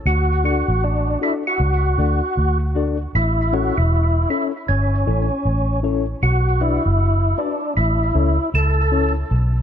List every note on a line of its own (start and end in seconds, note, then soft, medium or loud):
0.06 0.61 D2 loud
0.06 0.44 F#4 loud
0.44 0.65 D4 medium
0.44 0.65 F#4 medium
0.44 0.85 F#4 loud
0.44 0.65 A4 medium
0.44 0.65 D5 loud
0.68 1.15 A1 medium
0.84 1.19 D4 loud
1.21 1.42 D4 medium
1.21 1.34 E4 medium
1.21 1.42 F#4 medium
1.21 1.42 A4 medium
1.21 1.42 D5 medium
1.47 2.58 F#4 loud
1.60 1.94 C#2 medium
1.98 2.20 D2 medium
1.98 2.19 D4 medium
1.98 2.19 F#4 medium
1.98 2.19 A4 medium
1.98 2.19 D5 medium
2.37 3.06 D2 medium
2.75 2.96 D4 medium
2.75 2.96 F#4 medium
2.75 2.97 A4 medium
2.75 2.97 D5 loud
3.15 3.70 A1 loud
3.15 3.54 E4 loud
3.52 3.73 C#4 medium
3.52 3.74 E4 medium
3.52 3.78 F#4 loud
3.52 3.74 A4 medium
3.52 3.74 C#5 medium
3.78 4.24 E1 medium
3.78 4.29 E4 loud
4.29 4.50 C#4 medium
4.29 4.51 E4 medium
4.29 4.48 E4 medium
4.29 4.51 A4 medium
4.29 4.51 C#5 loud
4.68 5.03 G1 medium
4.68 5.80 C#4 medium
5.07 5.29 A1 medium
5.07 5.27 C#4 medium
5.07 5.28 E4 medium
5.07 5.28 A4 medium
5.07 5.28 C#5 loud
5.45 6.14 A1 medium
5.83 6.04 C#4 medium
5.83 6.04 E4 medium
5.83 6.05 A4 medium
5.83 6.05 C#5 loud
6.23 6.78 B1 loud
6.23 6.62 F#4 medium
6.60 6.81 D4 medium
6.60 7.40 E4 medium
6.60 6.82 F#4 medium
6.60 6.82 B4 medium
6.60 6.82 D5 loud
6.86 7.32 F#1 medium
7.38 7.58 D4 medium
7.38 7.74 D4 medium
7.38 7.59 F#4 medium
7.38 7.59 B4 medium
7.38 7.59 D5 loud
7.77 8.11 A1 loud
7.77 8.50 E4 loud
8.14 8.37 C#2 medium
8.14 8.35 C#4 medium
8.14 8.36 E4 medium
8.14 8.36 A4 medium
8.14 8.36 C#5 medium
8.54 9.22 C#2 medium
8.54 9.13 A4 loud
8.92 9.12 C#4 loud
8.92 9.13 E4 medium
8.92 9.13 A4 medium
8.92 9.13 C#5 loud
9.31 9.62 B1 medium